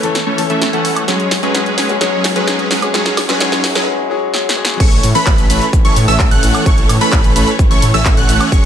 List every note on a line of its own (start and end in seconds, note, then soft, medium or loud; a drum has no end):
0.00 1.04 E3 medium
0.00 0.15 E3 medium
0.00 1.04 A3 medium
0.00 0.15 A3 medium
0.00 1.04 C#4 medium
0.00 0.16 C#4 medium
0.00 1.04 A4 medium
0.00 3.83 C#5 medium
0.00 closed hi-hat medium
0.00 riser medium
0.04 0.16 A4 loud
0.15 snare medium
0.15 closed hi-hat medium
0.27 0.42 E3 medium
0.27 0.42 A3 medium
0.27 0.42 C#4 medium
0.27 0.42 A4 medium
0.27 0.42 C#5 loud
0.38 0.50 E3 medium
0.38 0.50 A3 medium
0.38 0.50 C#4 medium
0.38 0.51 A4 medium
0.38 open hi-hat loud
0.50 0.70 E3 medium
0.50 0.70 A3 medium
0.50 0.70 C#4 medium
0.50 0.70 A4 medium
0.50 0.70 E5 loud
0.50 closed hi-hat soft
0.62 snare medium
0.62 closed hi-hat medium
0.73 1.05 E3 medium
0.73 1.05 A3 medium
0.73 1.05 C#4 medium
0.73 1.05 A4 medium
0.73 1.06 A4 medium
0.73 1.05 F#5 loud
0.73 closed hi-hat soft
0.85 open hi-hat loud
0.96 closed hi-hat medium
0.96 high woodblock medium
1.07 1.40 F#3 medium
1.07 3.84 F#3 medium
1.07 1.33 F#3 medium
1.07 1.40 G#3 medium
1.07 3.84 G#3 medium
1.07 1.33 G#3 medium
1.07 3.84 C#4 medium
1.07 1.33 C#4 medium
1.07 1.40 C#4 medium
1.07 3.84 G#4 medium
1.07 1.33 G#4 medium
1.07 1.40 G#4 medium
1.07 1.33 C#5 medium
1.07 snare medium
1.07 closed hi-hat medium
1.20 closed hi-hat soft
1.31 snare medium
1.31 open hi-hat loud
1.42 1.86 F#3 medium
1.42 1.75 F#3 medium
1.42 1.87 G#3 medium
1.42 1.75 G#3 medium
1.42 1.75 C#4 medium
1.42 1.87 C#4 medium
1.42 1.75 G#4 medium
1.42 1.87 G#4 medium
1.42 1.75 B4 loud
1.42 closed hi-hat soft
1.55 snare medium
1.55 closed hi-hat medium
1.66 closed hi-hat soft
1.78 1.93 F#3 medium
1.78 1.93 G#3 medium
1.78 1.93 C#4 medium
1.78 1.93 G#4 medium
1.78 1.93 B4 medium
1.78 snare medium
1.78 open hi-hat loud
1.89 1.99 F#3 medium
1.89 1.99 G#3 medium
1.89 1.99 C#4 medium
1.89 1.99 G#4 loud
1.89 closed hi-hat soft
2.00 2.33 F#3 medium
2.00 2.26 F#3 medium
2.00 2.33 G#3 medium
2.00 2.26 G#3 medium
2.00 2.26 C#4 medium
2.00 2.33 C#4 medium
2.00 2.26 G#4 medium
2.00 2.33 G#4 medium
2.00 2.26 C#5 medium
2.00 snare medium
2.00 closed hi-hat medium
2.24 snare medium
2.24 open hi-hat loud
2.35 2.79 F#3 medium
2.35 2.68 F#3 medium
2.35 2.80 G#3 medium
2.35 2.68 G#3 medium
2.35 2.68 C#4 medium
2.35 2.80 C#4 medium
2.35 2.68 G#4 medium
2.35 2.80 G#4 medium
2.35 2.68 B4 loud
2.35 closed hi-hat soft
2.48 snare medium
2.48 closed hi-hat medium
2.59 closed hi-hat soft
2.71 2.86 F#3 medium
2.71 2.86 G#3 medium
2.71 2.86 C#4 medium
2.71 2.86 G#4 medium
2.71 2.86 B4 medium
2.71 snare medium
2.71 open hi-hat loud
2.82 2.92 F#3 medium
2.82 2.92 G#3 medium
2.82 2.92 C#4 medium
2.82 2.92 G#4 loud
2.82 closed hi-hat medium
2.82 high woodblock medium
2.93 3.26 F#3 medium
2.93 3.19 F#3 medium
2.93 3.26 G#3 medium
2.93 3.19 G#3 medium
2.93 3.19 C#4 medium
2.93 3.26 C#4 medium
2.93 3.19 G#4 medium
2.93 3.26 G#4 loud
2.93 3.19 C#5 medium
2.93 snare medium
2.93 closed hi-hat medium
3.06 snare medium
3.06 closed hi-hat soft
3.17 snare medium
3.17 open hi-hat loud
3.17 high woodblock medium
3.28 3.38 F#3 medium
3.28 3.39 F#3 loud
3.28 3.39 G#3 medium
3.28 3.39 C#4 medium
3.28 3.39 G#4 medium
3.28 3.39 G#4 loud
3.28 3.39 B4 loud
3.28 snare medium
3.28 closed hi-hat medium
3.40 3.72 F#3 medium
3.40 3.65 F#3 medium
3.40 3.73 G#3 medium
3.40 3.65 G#3 medium
3.40 3.65 C#4 medium
3.40 3.73 C#4 medium
3.40 3.65 G#4 medium
3.40 3.73 G#4 medium
3.40 3.65 C#5 medium
3.40 snare loud
3.40 closed hi-hat medium
3.52 snare medium
3.52 closed hi-hat soft
3.64 snare loud
3.64 open hi-hat loud
3.75 3.85 F#3 medium
3.75 3.85 F#3 loud
3.75 3.85 G#3 medium
3.75 3.85 C#4 medium
3.75 3.85 G#4 medium
3.75 3.85 G#4 loud
3.75 3.85 B4 loud
3.75 snare medium
3.75 closed hi-hat soft
3.86 4.08 F#3 medium
3.86 4.08 G#3 medium
3.86 4.09 C#4 medium
3.86 4.09 G#4 loud
4.10 4.31 F#3 medium
4.10 4.32 G#3 medium
4.10 4.32 C#4 medium
4.10 4.32 G#4 loud
4.33 4.55 F#3 medium
4.33 4.55 G#3 medium
4.33 4.55 C#4 medium
4.33 4.55 G#4 loud
4.33 snare medium
4.49 snare medium
4.56 4.78 F#3 loud
4.56 4.78 G#3 medium
4.56 4.78 C#4 medium
4.56 4.78 G#4 loud
4.65 snare loud
4.80 4.99 A1 loud
4.80 8.48 E3 medium
4.80 5.05 E3 medium
4.80 8.48 A3 medium
4.80 5.05 A3 medium
4.80 8.65 C#4 medium
4.80 5.05 C#4 medium
4.80 8.48 A4 medium
4.80 5.05 A4 medium
4.80 8.65 C#5 medium
4.80 5.05 C#5 medium
4.80 5.05 C#6 medium
4.80 kick loud
4.80 closed hi-hat medium
4.80 crash loud
4.80 cabasa soft
4.92 closed hi-hat soft
5.03 5.13 A2 medium
5.03 open hi-hat loud
5.03 cabasa medium
5.15 5.47 E3 loud
5.15 5.47 A3 medium
5.15 5.47 C#4 medium
5.15 5.47 A4 loud
5.15 5.47 B4 loud
5.15 5.47 B5 loud
5.15 closed hi-hat soft
5.15 cabasa soft
5.26 5.36 A1 medium
5.26 kick loud
5.26 clap loud
5.26 closed hi-hat medium
5.26 cabasa soft
5.38 5.48 A1 medium
5.38 closed hi-hat soft
5.38 cabasa soft
5.50 5.59 A1 loud
5.50 5.65 E3 medium
5.50 5.65 A3 medium
5.50 5.65 C#4 medium
5.50 5.65 A4 medium
5.50 5.65 B4 medium
5.50 5.65 B5 medium
5.50 open hi-hat loud
5.50 cabasa medium
5.62 closed hi-hat soft
5.62 cabasa soft
5.73 5.92 A1 medium
5.73 kick loud
5.73 closed hi-hat medium
5.73 cabasa soft
5.85 6.00 E3 medium
5.85 6.00 A3 medium
5.85 6.00 C#4 medium
5.85 6.00 A4 medium
5.85 6.00 C#5 loud
5.85 6.00 C#6 loud
5.85 closed hi-hat soft
5.85 cabasa soft
5.96 6.06 A2 medium
5.96 open hi-hat loud
5.96 cabasa medium
6.08 6.17 A1 loud
6.08 6.29 E3 medium
6.08 6.29 A3 medium
6.08 6.29 C#4 medium
6.08 6.29 A4 medium
6.08 6.29 E5 loud
6.08 6.28 E6 loud
6.08 closed hi-hat soft
6.08 cabasa soft
6.19 kick loud
6.19 clap loud
6.19 closed hi-hat medium
6.19 cabasa soft
6.31 6.63 E3 medium
6.31 6.63 A3 medium
6.31 6.63 C#4 medium
6.31 6.63 A4 medium
6.31 6.63 F#5 loud
6.31 6.63 F#6 loud
6.31 closed hi-hat soft
6.31 cabasa soft
6.43 6.52 A1 medium
6.43 open hi-hat loud
6.43 cabasa medium
6.55 closed hi-hat soft
6.55 cabasa soft
6.55 high woodblock medium
6.66 6.85 A1 loud
6.66 6.91 E3 medium
6.66 6.91 A3 medium
6.66 6.91 C#4 medium
6.66 6.91 A4 medium
6.66 6.91 C#5 medium
6.66 6.91 C#6 medium
6.66 kick loud
6.66 closed hi-hat medium
6.66 cabasa soft
6.78 closed hi-hat soft
6.89 6.99 A2 loud
6.89 open hi-hat loud
6.89 cabasa medium
6.89 high woodblock medium
7.01 7.33 E3 loud
7.01 7.33 A3 loud
7.01 7.33 C#4 medium
7.01 7.33 A4 medium
7.01 7.33 B4 loud
7.01 7.33 B5 loud
7.01 closed hi-hat soft
7.01 cabasa soft
7.12 7.22 A1 medium
7.12 kick loud
7.12 clap loud
7.12 closed hi-hat medium
7.12 cabasa soft
7.24 7.34 A1 medium
7.24 closed hi-hat soft
7.24 cabasa soft
7.36 7.45 A1 loud
7.36 7.51 E3 medium
7.36 7.51 A3 medium
7.36 7.51 C#4 medium
7.36 7.51 A4 medium
7.36 7.51 B4 medium
7.36 7.51 B5 medium
7.36 open hi-hat loud
7.36 cabasa medium
7.47 closed hi-hat soft
7.47 cabasa soft
7.59 7.78 A1 medium
7.59 kick loud
7.59 closed hi-hat medium
7.59 cabasa soft
7.71 7.86 E3 medium
7.71 7.86 A3 medium
7.71 7.86 C#4 medium
7.71 7.86 A4 medium
7.71 7.86 C#5 loud
7.71 7.86 C#6 loud
7.71 closed hi-hat soft
7.71 cabasa soft
7.82 7.92 A2 medium
7.82 open hi-hat loud
7.82 cabasa medium
7.94 8.03 A1 loud
7.94 8.15 E3 loud
7.94 8.15 A3 medium
7.94 8.15 C#4 medium
7.94 8.15 A4 medium
7.94 8.15 E5 loud
7.94 8.14 E6 loud
7.94 closed hi-hat soft
7.94 cabasa soft
8.05 8.24 A1 medium
8.05 kick loud
8.05 clap loud
8.05 closed hi-hat medium
8.05 cabasa soft
8.17 8.49 E3 medium
8.17 8.49 A3 medium
8.17 8.49 C#4 medium
8.17 8.49 A4 medium
8.17 8.49 F#5 loud
8.17 8.49 F#6 loud
8.17 closed hi-hat soft
8.17 cabasa soft
8.29 8.38 A1 medium
8.29 open hi-hat loud
8.29 cabasa medium
8.41 closed hi-hat soft
8.41 cabasa soft
8.41 high woodblock medium
8.52 8.65 F#1 loud
8.52 8.65 F#3 medium
8.52 8.65 G#3 medium
8.52 8.65 C#4 medium
8.52 8.65 G#4 medium
8.52 8.65 C#5 medium
8.52 8.65 C#6 medium
8.52 kick loud
8.52 closed hi-hat medium
8.52 cabasa soft